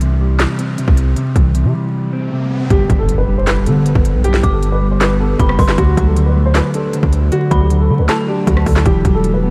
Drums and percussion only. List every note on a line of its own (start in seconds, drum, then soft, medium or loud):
0.01 closed hi-hat medium
0.39 snare loud
0.39 clap loud
0.39 closed hi-hat medium
0.59 closed hi-hat medium
0.78 closed hi-hat medium
0.88 kick medium
0.97 closed hi-hat medium
1.16 closed hi-hat medium
1.36 kick loud
1.36 closed hi-hat medium
1.55 closed hi-hat medium
2.70 kick loud
2.70 closed hi-hat medium
2.90 kick loud
2.90 closed hi-hat medium
3.09 closed hi-hat medium
3.47 snare loud
3.47 clap loud
3.47 closed hi-hat medium
3.66 closed hi-hat medium
3.86 closed hi-hat medium
3.95 kick loud
4.05 closed hi-hat medium
4.24 closed hi-hat medium
4.34 snare medium
4.43 kick loud
4.43 closed hi-hat medium
4.63 closed hi-hat medium
5.01 snare loud
5.01 clap loud
5.01 closed hi-hat medium
5.40 kick loud
5.40 closed hi-hat medium
5.49 cross-stick loud
5.59 kick loud
5.59 open hi-hat medium
5.69 snare medium
5.69 clap medium
5.78 kick loud
5.78 closed hi-hat medium
5.97 kick loud
5.97 closed hi-hat medium
6.16 closed hi-hat medium
6.55 snare loud
6.55 clap loud
6.55 closed hi-hat medium
6.74 closed hi-hat medium
6.93 closed hi-hat medium
7.03 kick loud
7.13 closed hi-hat medium
7.32 closed hi-hat medium
7.51 kick loud
7.51 closed hi-hat medium
7.70 closed hi-hat medium
8.09 snare loud
8.09 clap loud
8.09 closed hi-hat medium
8.47 kick loud
8.47 closed hi-hat medium
8.57 cross-stick loud
8.66 kick loud
8.66 open hi-hat medium
8.76 snare medium
8.76 clap medium
8.86 kick loud
8.86 closed hi-hat medium
9.05 kick loud
9.05 closed hi-hat medium
9.24 closed hi-hat medium